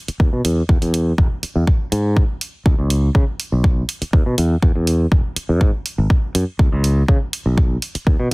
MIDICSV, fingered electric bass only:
0, 0, Header, 1, 3, 480
1, 0, Start_track
1, 0, Tempo, 491803
1, 674, Time_signature, 4, 2, 24, 8
1, 8137, End_track
2, 0, Start_track
2, 0, Title_t, "Fingered electric bass"
2, 0, Program_c, 0, 33
2, 194, Note_on_c, 0, 39, 87
2, 276, Note_off_c, 0, 39, 0
2, 320, Note_on_c, 0, 47, 81
2, 395, Note_off_c, 0, 47, 0
2, 435, Note_on_c, 0, 40, 87
2, 595, Note_off_c, 0, 40, 0
2, 674, Note_on_c, 0, 40, 98
2, 756, Note_off_c, 0, 40, 0
2, 797, Note_on_c, 0, 40, 91
2, 1090, Note_off_c, 0, 40, 0
2, 1153, Note_on_c, 0, 28, 100
2, 1236, Note_off_c, 0, 28, 0
2, 1518, Note_on_c, 0, 40, 79
2, 1594, Note_off_c, 0, 40, 0
2, 1872, Note_on_c, 0, 44, 92
2, 2169, Note_off_c, 0, 44, 0
2, 2593, Note_on_c, 0, 37, 96
2, 2676, Note_off_c, 0, 37, 0
2, 2718, Note_on_c, 0, 37, 91
2, 3010, Note_off_c, 0, 37, 0
2, 3073, Note_on_c, 0, 49, 97
2, 3155, Note_off_c, 0, 49, 0
2, 3438, Note_on_c, 0, 35, 79
2, 3730, Note_off_c, 0, 35, 0
2, 4033, Note_on_c, 0, 39, 89
2, 4115, Note_off_c, 0, 39, 0
2, 4159, Note_on_c, 0, 47, 78
2, 4235, Note_off_c, 0, 47, 0
2, 4275, Note_on_c, 0, 40, 86
2, 4435, Note_off_c, 0, 40, 0
2, 4513, Note_on_c, 0, 40, 98
2, 4595, Note_off_c, 0, 40, 0
2, 4640, Note_on_c, 0, 40, 91
2, 4931, Note_off_c, 0, 40, 0
2, 4993, Note_on_c, 0, 28, 97
2, 5076, Note_off_c, 0, 28, 0
2, 5360, Note_on_c, 0, 40, 80
2, 5474, Note_off_c, 0, 40, 0
2, 5474, Note_on_c, 0, 44, 85
2, 5556, Note_off_c, 0, 44, 0
2, 5839, Note_on_c, 0, 32, 80
2, 5914, Note_off_c, 0, 32, 0
2, 6196, Note_on_c, 0, 42, 82
2, 6277, Note_off_c, 0, 42, 0
2, 6434, Note_on_c, 0, 37, 95
2, 6516, Note_off_c, 0, 37, 0
2, 6560, Note_on_c, 0, 37, 94
2, 6851, Note_off_c, 0, 37, 0
2, 6913, Note_on_c, 0, 49, 101
2, 6996, Note_off_c, 0, 49, 0
2, 7278, Note_on_c, 0, 35, 79
2, 7570, Note_off_c, 0, 35, 0
2, 7873, Note_on_c, 0, 39, 90
2, 7956, Note_off_c, 0, 39, 0
2, 7998, Note_on_c, 0, 47, 84
2, 8074, Note_off_c, 0, 47, 0
2, 8137, End_track
3, 0, Start_track
3, 0, Title_t, "Muted fingered electric bass strokes"
3, 81, Note_on_c, 9, 29, 39
3, 179, Note_off_c, 9, 29, 0
3, 1394, Note_on_c, 9, 29, 41
3, 1492, Note_off_c, 9, 29, 0
3, 3919, Note_on_c, 9, 29, 40
3, 4017, Note_off_c, 9, 29, 0
3, 5234, Note_on_c, 9, 29, 41
3, 5332, Note_off_c, 9, 29, 0
3, 7760, Note_on_c, 9, 29, 40
3, 7857, Note_off_c, 9, 29, 0
3, 8137, End_track
0, 0, End_of_file